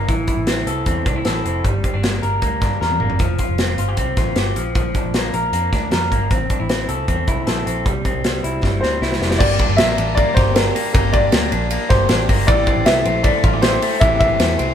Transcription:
Already playing: clean electric guitar A#3 D4 A#4
0.08 picked electric bass A1, clean electric guitar E3, kick, closed hi-hat
0.27 clean electric guitar E4, kick, closed hi-hat
0.37 picked electric bass A1
0.47 clean electric guitar C4, snare, closed hi-hat
0.67 picked electric bass C2, clean electric guitar A4, closed hi-hat
0.86 picked electric bass E2, clean electric guitar C4, kick, closed hi-hat
1.06 picked electric bass C2, clean electric guitar D4, kick, closed hi-hat
1.16 clean electric guitar E4
1.25 picked electric bass A1, clean electric guitar A4, snare, closed hi-hat
1.45 picked electric bass F1, clean electric guitar C4, closed hi-hat
1.64 picked electric bass G1, clean electric guitar G3, kick, closed hi-hat
1.84 clean electric guitar C4, kick, closed hi-hat
1.94 picked electric bass G1, clean electric guitar D4
2.03 clean electric guitar A#3, snare, closed hi-hat
2.22 picked electric bass G1, clean electric guitar A#4, closed hi-hat
2.42 picked electric bass D2, clean electric guitar A#3, kick, closed hi-hat
2.61 picked electric bass G2, clean electric guitar D4, kick, snare, closed hi-hat
2.81 picked electric bass E2, clean electric guitar A#4, snare
2.91 high tom
3.00 picked electric bass G1, clean electric guitar A#3, mid tom
3.10 floor tom
3.19 picked electric bass F1, clean electric guitar F3, kick, closed hi-hat
3.39 clean electric guitar F4, kick, closed hi-hat
3.49 picked electric bass F1
3.58 clean electric guitar C4, snare, closed hi-hat
3.78 picked electric bass G1, clean electric guitar F4, closed hi-hat
3.89 clean electric guitar G4
3.97 picked electric bass C2, clean electric guitar C4, kick, closed hi-hat
4.17 picked electric bass A1, clean electric guitar F4, kick, snare, closed hi-hat
4.36 picked electric bass G1, clean electric guitar G4, snare, closed hi-hat
4.56 picked electric bass A#1, clean electric guitar F3, closed hi-hat
4.75 picked electric bass A#1, clean electric guitar F3, kick, closed hi-hat
4.95 clean electric guitar D4, kick, closed hi-hat
5.05 picked electric bass A#1
5.14 clean electric guitar A#3, snare, closed hi-hat
5.33 picked electric bass A#1, clean electric guitar A#4, closed hi-hat
5.52 picked electric bass F2, clean electric guitar A#3, closed hi-hat
5.73 picked electric bass D2, clean electric guitar D4, kick, snare, closed hi-hat
5.91 picked electric bass F2, clean electric guitar A#4, snare, closed hi-hat
6.11 picked electric bass G1, clean electric guitar A#3, kick, closed hi-hat
6.31 picked electric bass A1, clean electric guitar C4, kick, closed hi-hat
6.50 clean electric guitar D4, kick, closed hi-hat
6.60 picked electric bass A1, clean electric guitar E4
6.69 clean electric guitar C4, snare, closed hi-hat
6.89 picked electric bass C2, clean electric guitar A4, closed hi-hat
7.08 picked electric bass E2, clean electric guitar C4, kick, closed hi-hat
7.27 picked electric bass C2, clean electric guitar E4, kick, closed hi-hat
7.47 picked electric bass A#1, clean electric guitar A4, snare, closed hi-hat
7.66 picked electric bass A#1, clean electric guitar C4, closed hi-hat
7.86 picked electric bass C2, clean electric guitar G3, kick, closed hi-hat
8.05 clean electric guitar C4, kick, closed hi-hat
8.15 picked electric bass C2
8.24 clean electric guitar G3, snare, closed hi-hat
8.44 picked electric bass C2, clean electric guitar E4, closed hi-hat
8.63 picked electric bass G1, clean electric guitar G3, kick, snare
8.80 picked electric bass D2, clean electric guitar C4, upright piano C5, snare
9.01 picked electric bass C2, clean electric guitar E4, snare
9.12 snare
9.20 picked electric bass F1, clean electric guitar G3, snare
9.31 snare
9.39 picked electric bass G1, clean electric guitar A#3 G4, upright piano D5, kick, crash
9.59 clean electric guitar D4, kick, ride
9.69 picked electric bass G1
9.77 picked electric bass A#1, clean electric guitar A#3, upright piano E5, snare, ride
9.98 picked electric bass A1, clean electric guitar D4, ride
10.15 clean electric guitar A#3, upright piano D5, kick, ride
10.34 picked electric bass G1, clean electric guitar G4, upright piano C5, kick, snare, ride
10.54 clean electric guitar D4, upright piano A#4, snare, ride
10.75 clean electric guitar A#3, open hi-hat, ride
10.93 picked electric bass G1, clean electric guitar A#3 G4, upright piano A#4, kick, hi-hat pedal, ride
11.13 clean electric guitar D4, upright piano D5, kick, ride
11.32 picked electric bass D2, clean electric guitar A#3, snare, ride
11.52 picked electric bass A#1, clean electric guitar D4, ride
11.71 clean electric guitar A#3, ride
11.89 picked electric bass G1, clean electric guitar G4, upright piano C5, kick, snare, ride
12.09 picked electric bass A1, clean electric guitar D4, snare, ride
12.29 picked electric bass G1, clean electric guitar A#3, kick, open hi-hat, ride
12.47 picked electric bass A1, clean electric guitar E3 G4, upright piano D5, kick, hi-hat pedal, ride
12.67 clean electric guitar C4, kick, ride
12.77 picked electric bass A1
12.86 picked electric bass C2, clean electric guitar A3, upright piano E5, snare, ride
13.05 picked electric bass A#1, clean electric guitar C4, ride
13.23 clean electric guitar A3, upright piano D5, kick, ride
13.44 picked electric bass A1, clean electric guitar F4, kick, ride
13.53 clean electric guitar G4
13.62 clean electric guitar C4, upright piano C5, snare, ride
13.82 clean electric guitar A3, open hi-hat, ride
14.00 picked electric bass A1, clean electric guitar E3 G4, upright piano E5, kick, hi-hat pedal, ride
14.19 clean electric guitar C4, upright piano E5, kick, ride
14.40 picked electric bass E2, clean electric guitar A3, snare, ride
14.59 picked electric bass C2, clean electric guitar C4, ride

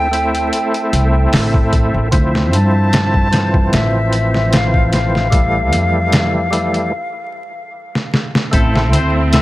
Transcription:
Already playing: upright bass D2, synth texture A4, flute G5
0.11 tonewheel organ A3 C4 E4, closed hi-hat
0.35 closed hi-hat
0.53 closed hi-hat
0.74 closed hi-hat
0.93 upright bass C2, closed hi-hat
1.33 upright bass A1, snare, open hi-hat
1.54 kick
1.73 kick, closed hi-hat
1.94 upright bass A1
2.12 upright bass D2, tonewheel organ F3 C4 E4, kick, closed hi-hat
2.35 snare
2.53 upright bass G2, flute A5, closed hi-hat
2.93 snare, closed hi-hat
3.14 kick
3.31 tonewheel organ E3 F3 C4, snare, closed hi-hat
3.54 kick
3.73 upright bass A1, flute E5, snare, closed hi-hat
4.13 closed hi-hat
4.34 snare
4.53 flute F5, snare, closed hi-hat
4.74 kick
4.93 flute F5, snare, closed hi-hat
5.15 snare
5.30 tonewheel organ E3 G3 A3, kick, closed hi-hat
5.72 upright bass F2, closed hi-hat
6.12 snare, closed hi-hat
6.51 tonewheel organ E3 G3 A3, closed hi-hat
6.74 closed hi-hat
7.95 snare
8.14 snare
8.35 snare
8.51 upright bass A1, tonewheel organ A3 C4 E4, string section C4, clean electric guitar A4, kick, closed hi-hat
8.76 snare
8.93 upright bass D2, clean electric guitar C5, closed hi-hat
9.33 clean electric guitar E5, snare, closed hi-hat

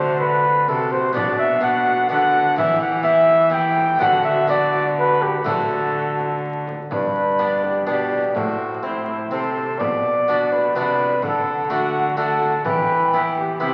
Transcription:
Already playing: harpsichord D3 A3 D4, cello D3, recorder F#4, cornet C5
0.20 cornet B4
0.45 frame drum
0.68 cello C3, harpsichord C3, recorder F#4, cornet A4
0.92 cornet C5, frame drum
1.13 harpsichord B2 B3 D4, cello B2, recorder F#4, cornet D5, frame drum
1.39 cornet E5
1.61 harpsichord B3 D4, recorder F#4, cornet F#5
1.88 frame drum
2.09 cello D3, harpsichord D3 B3 D4, recorder F#4, cornet F#5
2.34 frame drum
2.56 cello E3, harpsichord E3 B3 E4, recorder G4, cornet E5, frame drum
2.81 cornet F#5
3.03 harpsichord B3 E4, recorder G4, cornet E5
3.29 frame drum
3.50 harpsichord B3 E4, cornet G5
3.54 recorder G4
3.78 frame drum
3.99 cello D3, harpsichord D3 B3 F#4, recorder F#4, cornet F#5, frame drum
4.25 cornet E5
4.48 harpsichord B3 F#4, recorder F#4, cornet D5
4.74 frame drum
4.98 recorder F#4, cornet B4
5.22 cornet G4, frame drum
5.45 cello D3, harpsichord D3 A3 F#4, recorder F#4, cornet A4, frame drum
6.19 frame drum
6.67 frame drum
6.91 cello G2, harpsichord G2, cornet B4, recorder D5, frame drum
7.39 harpsichord B3 D4
7.64 cornet G4, frame drum
7.87 harpsichord B2 B3 D4, cello B2, cornet G4, recorder D5
8.12 frame drum
8.35 cello A2, harpsichord A2, cornet F#4, recorder C5, frame drum
8.83 harpsichord C4, cornet E4, recorder C5
9.08 frame drum
9.30 cello C3, harpsichord C3 C4, cornet A4, recorder C5
9.56 frame drum
9.79 harpsichord B2, cello B2, cornet D5, recorder D5, frame drum
10.28 harpsichord B3 D4 F#4
10.52 cornet B4, frame drum
10.75 cello C3, harpsichord C3 B3 D4 F#4, cornet B4, recorder D5
11.00 frame drum
11.22 cello D3, harpsichord D3, cornet A4, recorder F#5, frame drum
11.70 harpsichord A3 D4 F#4, cornet F#4, recorder F#5
11.95 frame drum
12.17 harpsichord A3 D4 F#4, cornet A4, recorder F#5
12.42 frame drum
12.65 harpsichord E3, cello E3, cornet B4, recorder G5, frame drum
13.14 harpsichord B3 E4
13.37 cornet G4, frame drum
13.60 harpsichord C3 B3 E4, cello C3, cornet G4, recorder G5

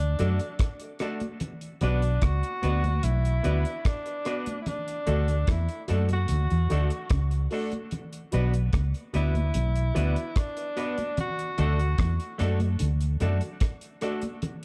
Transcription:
Already playing: fingered electric bass D2, tenor saxophone D4
0.00 closed hi-hat
0.19 fingered electric bass F#2, clean electric guitar F#3 A3 D4 F#4 A4, upright piano F#4 A4 D5, closed hi-hat, low conga
0.39 closed hi-hat
0.59 kick, cross-stick, closed hi-hat
0.80 upright piano A4 D5, closed hi-hat
0.99 clean electric guitar A3 D4 F#4 A4, upright piano F#4 A4 D5, cross-stick, closed hi-hat
1.20 closed hi-hat, high conga
1.40 closed hi-hat, low conga
1.61 closed hi-hat
1.81 fingered electric bass B1, clean electric guitar B2 B3 D4 F#4 B4, tenor saxophone D4, upright piano F#4 B4 D5, closed hi-hat, low conga
2.02 closed hi-hat
2.22 fingered electric bass C#2, clean electric guitar C#3, tenor saxophone F#4, kick, cross-stick, closed hi-hat, high conga
2.43 closed hi-hat
2.62 fingered electric bass D2, clean electric guitar D3 B3 D4 F#4 B4, upright piano F#4 B4 D5, closed hi-hat, high conga
2.84 upright piano B4 D5, closed hi-hat, high conga
3.03 fingered electric bass B1, clean electric guitar B2, tenor saxophone E4, closed hi-hat, high conga, low conga
3.25 closed hi-hat
3.43 fingered electric bass D2, clean electric guitar D3 B3 D4 F#4 B4, upright piano F#4 B4 D5, closed hi-hat, low conga
3.65 closed hi-hat
3.85 tenor saxophone D4, kick, cross-stick, closed hi-hat
4.06 upright piano B4 D5, closed hi-hat
4.25 clean electric guitar B3 D4 F#4 B4, upright piano F#4 B4 D5, cross-stick, closed hi-hat
4.46 closed hi-hat, high conga
4.61 tenor saxophone E4
4.66 tenor saxophone D4, closed hi-hat, low conga
4.88 closed hi-hat
5.06 fingered electric bass D2, clean electric guitar D3 A3 D4 F#4 A4, upright piano F#4 A4 D5, closed hi-hat, low conga
5.28 closed hi-hat
5.47 fingered electric bass E2, clean electric guitar E3, tenor saxophone E4, kick, cross-stick, closed hi-hat, high conga
5.69 closed hi-hat
5.87 fingered electric bass F#2, clean electric guitar F#3 A3 D4 F#4 A4, upright piano F#4 A4 D5, closed hi-hat, high conga
6.09 upright piano A4 D5, closed hi-hat, high conga
6.13 tenor saxophone F#4
6.28 fingered electric bass D2, clean electric guitar D3, closed hi-hat, high conga, low conga
6.50 fingered electric bass E2, clean electric guitar E3, closed hi-hat
6.69 fingered electric bass D2, clean electric guitar D3 A3 D4 F#4 A4, upright piano F#4 A4 D5, closed hi-hat, low conga
6.90 closed hi-hat
7.10 fingered electric bass C#2, clean electric guitar C#3, kick, cross-stick, closed hi-hat
7.31 closed hi-hat
7.50 clean electric guitar A3 D4 F#4 A4, upright piano F#4 A4 D5, open hi-hat
7.71 closed hi-hat, high conga
7.91 closed hi-hat, low conga
8.13 closed hi-hat
8.32 fingered electric bass B1, clean electric guitar B2 B3 D4 F#4 B4, upright piano F#4 B4 D5, closed hi-hat, low conga
8.54 closed hi-hat
8.73 fingered electric bass C#2, clean electric guitar C#3, kick, cross-stick, closed hi-hat, high conga
8.94 closed hi-hat
9.13 fingered electric bass D2, clean electric guitar D3 B3 D4 F#4 B4, tenor saxophone E4, upright piano F#4 B4 D5, closed hi-hat, high conga
9.34 upright piano B4 D5, closed hi-hat, high conga
9.54 fingered electric bass B1, clean electric guitar B2, closed hi-hat, high conga, low conga
9.76 closed hi-hat
9.94 fingered electric bass D2, clean electric guitar D3 B3 D4 F#4 B4, upright piano F#4 B4 D5, closed hi-hat, low conga
10.16 closed hi-hat
10.36 tenor saxophone D4, kick, cross-stick, closed hi-hat
10.57 upright piano B4 D5, closed hi-hat
10.76 clean electric guitar B3 D4 F#4 B4, upright piano F#4 B4 D5, closed hi-hat
10.98 closed hi-hat, high conga
11.17 tenor saxophone F#4, closed hi-hat, low conga
11.39 closed hi-hat
11.57 fingered electric bass D2, clean electric guitar D3 A3 D4 F#4 A4, upright piano F#4 A4 D5, tenor saxophone F#4, closed hi-hat, low conga
11.79 closed hi-hat
11.98 fingered electric bass E2, clean electric guitar E3, kick, cross-stick, closed hi-hat, high conga
12.20 closed hi-hat
12.38 fingered electric bass F#2, clean electric guitar F#3 A3 D4 F#4 A4, upright piano F#4 A4 D5, cross-stick, closed hi-hat, high conga
12.60 closed hi-hat, high conga
12.79 fingered electric bass D2, clean electric guitar D3, closed hi-hat, high conga, low conga
13.01 closed hi-hat
13.20 fingered electric bass F#2, clean electric guitar F#3 A3 D4 F#4 A4, upright piano F#4 A4 D5, closed hi-hat, low conga
13.41 closed hi-hat
13.60 kick, cross-stick, closed hi-hat
13.81 closed hi-hat
14.01 clean electric guitar A3 D4 F#4 A4, upright piano F#4 A4 D5, cross-stick, closed hi-hat
14.22 closed hi-hat, high conga
14.42 closed hi-hat, low conga

